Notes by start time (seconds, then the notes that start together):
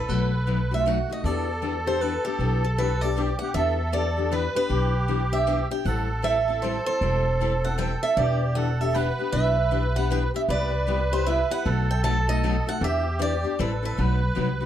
Already playing: A4
0.08 B1 B2 F#3 A3 D#4 F#4 A4 B4
0.47 B2 F#3 A3 D#4 F#4
0.71 A3 D#4 F#4 E5
0.80 F4
0.86 B2 F#3 A3 D#4 F#4 F#5
1.09 A3 D#4 F#4 D#5
1.24 E2 E3 B3 D4 G4 A4 D5
1.62 E3 B3 D4 G4
1.86 B3 D4 G4 C5
2.01 E3 B3 D4 G4 B4
2.25 B3 D4 G4
2.39 B1 E3 B3 D4 G4
2.64 A4
2.78 E3 B3 D4 G4 B4
3.01 B3 D4 G4 D5
3.16 E3 B3 D4 G4
3.39 B3 D4 G4 F#5
3.54 E2 E3 B3 D4 G4 A4 E5
3.92 E3 B3 D4 G4 D5
4.17 B3 D4 G4
4.31 E3 B3 D4 G4 B4
4.55 B3 D4 G4 B4
4.69 B1 E3 B3 D4 G4
5.08 E3 B3 D4 G4
5.32 B3 D4 G4 E5
5.47 E3 B3 D4 G4
5.71 B3 D4 G4 G5
5.85 A1 E3 G3 C4 E4 A4 F#5
6.22 E3 G3 C4 E4 A4 E5
6.48 C4 E4 A4
6.62 E3 G3 C4 E4 A4 C5
6.86 C4 E4 A4 C5
7.01 E1 E3 G3 C4 E4 A4
7.41 E3 G3 C4 E4 A4
7.65 C4 E4 A4 F#5
7.78 E3 G3 C4 E4 A4 G5
8.03 C4 E4 A4 E5
8.17 E1 E3 B3 D4 G4 D5
8.55 E3 B3 D4 G4 A4 F#5
8.81 B3 D4 G4 E5
8.94 E3 B3 D4 G4 B4 F#5
9.19 B3 D4 G4
9.32 B1 E3 B3 D4 G4 E5
9.71 E3 B3 D4 G4
9.96 B3 D4 G4 F#5
10.10 E3 B3 D4 G4 G5
10.34 B3 D4 G4 E5
10.48 C2 C3 G3 B3 E4 G4 B4 D5
10.87 C3 G3 B3 E4 G4
11.12 B3 E4 G4 C5
11.26 C3 G3 B3 E4 G4 E5
11.50 B3 E4 G4 F#5
11.65 B1 B2 F#3 A3 D#4 F#4 A4
11.91 G5
12.03 B2 F#3 A3 D#4 F#4 A5
12.27 A3 D#4 F#4 D#5
12.43 B2 F#3 A3 D#4 F#4
12.67 A3 D#4 F#4 F#5
12.80 E2 E3 B3 D4 G4 E5
13.19 E3 B3 D4 G4 D5
13.43 B3 D4 G4
13.59 A1 E3 G3 C4 E4 A4 B4
13.82 C4 E4 A4 B4
13.97 B1 B2 F#3 A3 D#4 F#4 B4
14.35 C2 B2 F#3 A3 D#4 F#4
14.61 A3 D#4 F#4